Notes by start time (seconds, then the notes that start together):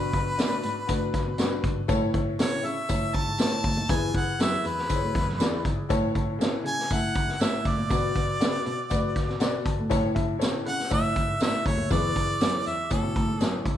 Already playing: B2 B4 B5
0.13 D4 F#4 B4, kick, closed hi-hat
0.37 A2 D4 F#4 D5, snare, closed hi-hat, tambourine
0.63 G#2, closed hi-hat
0.87 A2 D4 F#4 B4, kick, closed hi-hat, tambourine
1.14 kick, snare, closed hi-hat
1.27 B2
1.38 G2 D4 F#4 A#4, snare, closed hi-hat, tambourine
1.45 B4
1.64 G#2, kick, closed hi-hat
1.88 A2 E4 A4 C#5, kick, closed hi-hat, tambourine
2.14 E4 A4 C#5, kick, closed hi-hat
2.39 C#3 E4 A4 C#5 C#6, snare, closed hi-hat, tambourine
2.64 C#3 E5 E6, closed hi-hat
2.89 A2 E4 A4 C#5, kick, closed hi-hat, tambourine
3.14 A5 A6, kick, closed hi-hat
3.27 G#2
3.38 A2 E4 A4 C5 A5 A6, snare, closed hi-hat, tambourine
3.46 C#5
3.64 D2, kick, open hi-hat
3.77 D#2
3.89 E2 E3 E4 G#4 B4 G#5 G#6, kick, closed hi-hat, tambourine
4.14 E4 G#4 B4 F#5 F#6, kick, closed hi-hat
4.39 F#2 E4 G#4 B4 E5 E6, snare, closed hi-hat, tambourine
4.65 E2 B4 B5, closed hi-hat
4.78 snare
4.89 E4 G#4 C5, kick, closed hi-hat, tambourine
4.96 C#5
5.02 D2
5.15 E2, kick, snare, closed hi-hat
5.26 F#2, snare
5.39 E2 E4 G#4 D5, snare, closed hi-hat, tambourine
5.65 G#2, kick, closed hi-hat
5.89 A2 E4 A4 C#5, kick, closed hi-hat, tambourine
6.15 E4 A4 C#5, kick, closed hi-hat
6.39 C#3 E4 A4 C#5, snare, closed hi-hat, tambourine
6.64 C#3 G#5 G#6, closed hi-hat
6.79 snare
6.90 A2 E4 A4 E5 F#5 F#6, kick, closed hi-hat, tambourine
7.15 kick, closed hi-hat
7.27 G#2, snare
7.40 A2 E4 A4 C#5 E5 E6, snare, closed hi-hat, tambourine
7.65 A2 D5 D6, kick, closed hi-hat
7.78 A#2
7.90 B2 F#4 B4 D5, kick, closed hi-hat, tambourine
8.16 F#4 B4 D5, kick, closed hi-hat
8.40 C#3 F#4 B4 D5, snare, closed hi-hat, tambourine
8.66 B2, closed hi-hat
8.90 A2 F#4 B4 D5, kick, closed hi-hat, tambourine
9.16 kick, snare, closed hi-hat
9.29 B2, snare
9.40 B2 F#4 B4 D5 F#5, snare, closed hi-hat, tambourine
9.65 A5, kick, closed hi-hat
9.79 A2
9.90 A2 E4 A4 C#5, kick, closed hi-hat, tambourine
10.15 E4 A4 E5, kick, closed hi-hat
10.39 C#3 E4 A4 C#5, snare, closed hi-hat, tambourine
10.66 C#3 F#5 F#6, closed hi-hat
10.79 snare
10.90 A2 E4 A4 C#5 E5 E6, kick, closed hi-hat, tambourine
11.16 kick, closed hi-hat
11.28 G#2
11.40 A2 E4 A4 D5 E5 E6, snare, closed hi-hat, tambourine
11.47 E5
11.66 D2 C#5 C#6, kick, closed hi-hat
11.78 D#2
11.90 E2 E3 E4 G#4 B4 D5 D6, kick, closed hi-hat, tambourine
12.15 E4 G#4 B4, kick, closed hi-hat
12.41 F#2 E4 G#4 C5, snare, closed hi-hat, tambourine
12.48 C#5
12.66 E2 E5 E6, closed hi-hat
12.90 A2 E4 A4 C#5 A5, kick, closed hi-hat, tambourine
13.04 B2
13.16 A2, kick, closed hi-hat
13.29 G#2
13.40 F#2 E4 G#4 A4 C#5, snare, closed hi-hat, tambourine
13.65 G#2, kick, closed hi-hat